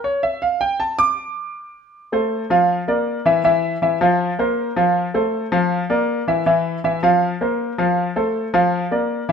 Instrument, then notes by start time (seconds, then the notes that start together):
grand piano
0.04 C#5
0.23 E5
0.42 F5
0.61 G5
0.80 A5
0.99 D6
2.12 A3 A4 C5
2.50 F3 F4 F5
2.88 A#3 A#4 D5
3.26 E3 E4 E5
3.44 E3 E4 E5
3.82 E3 E4 E5
4.01 F3 F4 F5
4.39 A#3 A#4 C5
4.76 F3 F4 F5
5.14 A3 A4 C5
5.52 F3 F4 F5
5.90 A#3 A#4 D5
6.28 E3 E4 E5
6.46 E3 E4 E5
6.84 E3 E4 E5
7.03 F3 F4 F5
7.41 A#3 A#4 C5
7.78 F3 F4 F5
8.16 A3 A4 C5
8.54 F3 F4 F5
8.91 A#3 A#4 D5
9.29 E3 E4